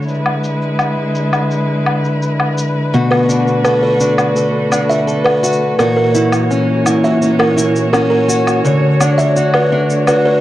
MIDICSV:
0, 0, Header, 1, 5, 480
1, 0, Start_track
1, 0, Tempo, 714286
1, 52, Time_signature, 4, 2, 24, 8
1, 6993, End_track
2, 0, Start_track
2, 0, Title_t, "Kalimba"
2, 0, Program_c, 0, 108
2, 2089, Note_on_c, 0, 71, 59
2, 2204, Note_off_c, 0, 71, 0
2, 2449, Note_on_c, 0, 71, 62
2, 2519, Note_off_c, 0, 71, 0
2, 2573, Note_on_c, 0, 71, 61
2, 2686, Note_off_c, 0, 71, 0
2, 3289, Note_on_c, 0, 76, 63
2, 3359, Note_off_c, 0, 76, 0
2, 3525, Note_on_c, 0, 71, 63
2, 3642, Note_off_c, 0, 71, 0
2, 3890, Note_on_c, 0, 70, 69
2, 3959, Note_off_c, 0, 70, 0
2, 4009, Note_on_c, 0, 70, 64
2, 4124, Note_off_c, 0, 70, 0
2, 4731, Note_on_c, 0, 76, 64
2, 4800, Note_off_c, 0, 76, 0
2, 4967, Note_on_c, 0, 70, 64
2, 5083, Note_off_c, 0, 70, 0
2, 5329, Note_on_c, 0, 70, 66
2, 5399, Note_off_c, 0, 70, 0
2, 5445, Note_on_c, 0, 70, 59
2, 5562, Note_off_c, 0, 70, 0
2, 6169, Note_on_c, 0, 76, 63
2, 6239, Note_off_c, 0, 76, 0
2, 6413, Note_on_c, 0, 71, 64
2, 6526, Note_off_c, 0, 71, 0
2, 6773, Note_on_c, 0, 71, 63
2, 6841, Note_off_c, 0, 71, 0
2, 6891, Note_on_c, 0, 71, 68
2, 6993, Note_off_c, 0, 71, 0
2, 6993, End_track
3, 0, Start_track
3, 0, Title_t, "Steel-string acoustic guitar"
3, 0, Program_c, 1, 25
3, 1974, Note_on_c, 1, 47, 72
3, 1977, Note_on_c, 1, 66, 59
3, 2211, Note_on_c, 1, 62, 54
3, 2450, Note_on_c, 1, 69, 59
3, 2684, Note_off_c, 1, 62, 0
3, 2692, Note_on_c, 1, 62, 49
3, 2921, Note_off_c, 1, 69, 0
3, 2929, Note_on_c, 1, 69, 54
3, 3161, Note_off_c, 1, 62, 0
3, 3169, Note_on_c, 1, 62, 54
3, 3400, Note_off_c, 1, 69, 0
3, 3408, Note_on_c, 1, 69, 56
3, 3646, Note_off_c, 1, 66, 0
3, 3649, Note_on_c, 1, 66, 53
3, 3890, Note_on_c, 1, 46, 70
3, 3892, Note_off_c, 1, 66, 0
3, 3893, Note_off_c, 1, 47, 0
3, 3895, Note_on_c, 1, 66, 58
3, 3938, Note_off_c, 1, 62, 0
3, 3938, Note_off_c, 1, 69, 0
3, 4130, Note_on_c, 1, 64, 57
3, 4373, Note_on_c, 1, 61, 56
3, 4604, Note_off_c, 1, 64, 0
3, 4612, Note_on_c, 1, 64, 54
3, 4848, Note_off_c, 1, 61, 0
3, 4850, Note_on_c, 1, 61, 55
3, 5078, Note_off_c, 1, 64, 0
3, 5086, Note_on_c, 1, 64, 50
3, 5325, Note_off_c, 1, 61, 0
3, 5328, Note_on_c, 1, 61, 52
3, 5564, Note_off_c, 1, 66, 0
3, 5567, Note_on_c, 1, 66, 54
3, 5807, Note_off_c, 1, 46, 0
3, 5810, Note_on_c, 1, 50, 71
3, 5811, Note_off_c, 1, 66, 0
3, 5814, Note_on_c, 1, 73, 57
3, 5857, Note_off_c, 1, 64, 0
3, 6052, Note_on_c, 1, 62, 55
3, 6072, Note_off_c, 1, 61, 0
3, 6291, Note_on_c, 1, 66, 59
3, 6530, Note_off_c, 1, 62, 0
3, 6533, Note_on_c, 1, 62, 56
3, 6766, Note_off_c, 1, 66, 0
3, 6774, Note_on_c, 1, 66, 55
3, 6993, Note_off_c, 1, 50, 0
3, 6993, Note_off_c, 1, 62, 0
3, 6993, Note_off_c, 1, 66, 0
3, 6993, Note_off_c, 1, 73, 0
3, 6993, End_track
4, 0, Start_track
4, 0, Title_t, "String quartet"
4, 0, Program_c, 2, 48
4, 0, Note_on_c, 2, 50, 61
4, 50, Note_on_c, 2, 71, 70
4, 51, Note_on_c, 2, 56, 59
4, 51, Note_on_c, 2, 64, 54
4, 1952, Note_off_c, 2, 56, 0
4, 1952, Note_off_c, 2, 64, 0
4, 1970, Note_on_c, 2, 66, 56
4, 1971, Note_on_c, 2, 57, 57
4, 3864, Note_off_c, 2, 50, 0
4, 3864, Note_off_c, 2, 71, 0
4, 3872, Note_off_c, 2, 57, 0
4, 3872, Note_off_c, 2, 66, 0
4, 3890, Note_on_c, 2, 52, 60
4, 3891, Note_on_c, 2, 46, 60
4, 3892, Note_on_c, 2, 58, 59
4, 3892, Note_on_c, 2, 73, 67
4, 3893, Note_on_c, 2, 66, 58
4, 5792, Note_off_c, 2, 46, 0
4, 5792, Note_off_c, 2, 52, 0
4, 5793, Note_off_c, 2, 58, 0
4, 5809, Note_on_c, 2, 57, 54
4, 5813, Note_on_c, 2, 50, 69
4, 6993, Note_off_c, 2, 50, 0
4, 6993, Note_off_c, 2, 57, 0
4, 6993, Note_off_c, 2, 66, 0
4, 6993, Note_off_c, 2, 73, 0
4, 6993, End_track
5, 0, Start_track
5, 0, Title_t, "Drums"
5, 16, Note_on_c, 9, 69, 20
5, 56, Note_off_c, 9, 69, 0
5, 56, Note_on_c, 9, 69, 35
5, 97, Note_off_c, 9, 69, 0
5, 97, Note_on_c, 9, 69, 18
5, 164, Note_off_c, 9, 69, 0
5, 173, Note_on_c, 9, 77, 64
5, 240, Note_off_c, 9, 77, 0
5, 294, Note_on_c, 9, 69, 67
5, 361, Note_off_c, 9, 69, 0
5, 416, Note_on_c, 9, 69, 28
5, 483, Note_off_c, 9, 69, 0
5, 530, Note_on_c, 9, 77, 61
5, 533, Note_on_c, 9, 69, 38
5, 598, Note_off_c, 9, 77, 0
5, 600, Note_off_c, 9, 69, 0
5, 775, Note_on_c, 9, 69, 59
5, 842, Note_off_c, 9, 69, 0
5, 893, Note_on_c, 9, 77, 63
5, 895, Note_on_c, 9, 69, 27
5, 960, Note_off_c, 9, 77, 0
5, 963, Note_off_c, 9, 69, 0
5, 1015, Note_on_c, 9, 69, 37
5, 1082, Note_off_c, 9, 69, 0
5, 1253, Note_on_c, 9, 77, 60
5, 1320, Note_off_c, 9, 77, 0
5, 1375, Note_on_c, 9, 69, 27
5, 1442, Note_off_c, 9, 69, 0
5, 1494, Note_on_c, 9, 69, 39
5, 1561, Note_off_c, 9, 69, 0
5, 1611, Note_on_c, 9, 77, 60
5, 1678, Note_off_c, 9, 77, 0
5, 1733, Note_on_c, 9, 69, 67
5, 1800, Note_off_c, 9, 69, 0
5, 1974, Note_on_c, 9, 69, 35
5, 2042, Note_off_c, 9, 69, 0
5, 2094, Note_on_c, 9, 77, 65
5, 2161, Note_off_c, 9, 77, 0
5, 2214, Note_on_c, 9, 69, 67
5, 2282, Note_off_c, 9, 69, 0
5, 2335, Note_on_c, 9, 69, 26
5, 2402, Note_off_c, 9, 69, 0
5, 2450, Note_on_c, 9, 77, 69
5, 2452, Note_on_c, 9, 69, 37
5, 2517, Note_off_c, 9, 77, 0
5, 2520, Note_off_c, 9, 69, 0
5, 2690, Note_on_c, 9, 69, 60
5, 2758, Note_off_c, 9, 69, 0
5, 2810, Note_on_c, 9, 77, 64
5, 2813, Note_on_c, 9, 69, 27
5, 2877, Note_off_c, 9, 77, 0
5, 2880, Note_off_c, 9, 69, 0
5, 2932, Note_on_c, 9, 69, 37
5, 2999, Note_off_c, 9, 69, 0
5, 3171, Note_on_c, 9, 77, 65
5, 3173, Note_on_c, 9, 69, 61
5, 3238, Note_off_c, 9, 77, 0
5, 3241, Note_off_c, 9, 69, 0
5, 3296, Note_on_c, 9, 69, 28
5, 3364, Note_off_c, 9, 69, 0
5, 3415, Note_on_c, 9, 69, 33
5, 3483, Note_off_c, 9, 69, 0
5, 3532, Note_on_c, 9, 77, 63
5, 3599, Note_off_c, 9, 77, 0
5, 3655, Note_on_c, 9, 69, 66
5, 3714, Note_off_c, 9, 69, 0
5, 3714, Note_on_c, 9, 69, 26
5, 3781, Note_off_c, 9, 69, 0
5, 3892, Note_on_c, 9, 77, 65
5, 3894, Note_on_c, 9, 69, 36
5, 3959, Note_off_c, 9, 77, 0
5, 3961, Note_off_c, 9, 69, 0
5, 4133, Note_on_c, 9, 69, 63
5, 4200, Note_off_c, 9, 69, 0
5, 4250, Note_on_c, 9, 77, 62
5, 4252, Note_on_c, 9, 69, 28
5, 4317, Note_off_c, 9, 77, 0
5, 4319, Note_off_c, 9, 69, 0
5, 4374, Note_on_c, 9, 69, 37
5, 4441, Note_off_c, 9, 69, 0
5, 4610, Note_on_c, 9, 77, 65
5, 4612, Note_on_c, 9, 69, 64
5, 4677, Note_off_c, 9, 77, 0
5, 4679, Note_off_c, 9, 69, 0
5, 4733, Note_on_c, 9, 69, 26
5, 4800, Note_off_c, 9, 69, 0
5, 4853, Note_on_c, 9, 69, 32
5, 4920, Note_off_c, 9, 69, 0
5, 4971, Note_on_c, 9, 77, 77
5, 5038, Note_off_c, 9, 77, 0
5, 5095, Note_on_c, 9, 69, 64
5, 5162, Note_off_c, 9, 69, 0
5, 5214, Note_on_c, 9, 69, 26
5, 5281, Note_off_c, 9, 69, 0
5, 5332, Note_on_c, 9, 77, 63
5, 5335, Note_on_c, 9, 69, 33
5, 5400, Note_off_c, 9, 77, 0
5, 5402, Note_off_c, 9, 69, 0
5, 5574, Note_on_c, 9, 69, 63
5, 5641, Note_off_c, 9, 69, 0
5, 5694, Note_on_c, 9, 77, 62
5, 5696, Note_on_c, 9, 69, 25
5, 5761, Note_off_c, 9, 77, 0
5, 5763, Note_off_c, 9, 69, 0
5, 5814, Note_on_c, 9, 69, 33
5, 5881, Note_off_c, 9, 69, 0
5, 6052, Note_on_c, 9, 77, 69
5, 6054, Note_on_c, 9, 69, 64
5, 6119, Note_off_c, 9, 77, 0
5, 6121, Note_off_c, 9, 69, 0
5, 6174, Note_on_c, 9, 69, 26
5, 6241, Note_off_c, 9, 69, 0
5, 6293, Note_on_c, 9, 69, 35
5, 6360, Note_off_c, 9, 69, 0
5, 6409, Note_on_c, 9, 77, 68
5, 6476, Note_off_c, 9, 77, 0
5, 6653, Note_on_c, 9, 69, 27
5, 6720, Note_off_c, 9, 69, 0
5, 6769, Note_on_c, 9, 77, 66
5, 6771, Note_on_c, 9, 69, 31
5, 6836, Note_off_c, 9, 77, 0
5, 6839, Note_off_c, 9, 69, 0
5, 6993, End_track
0, 0, End_of_file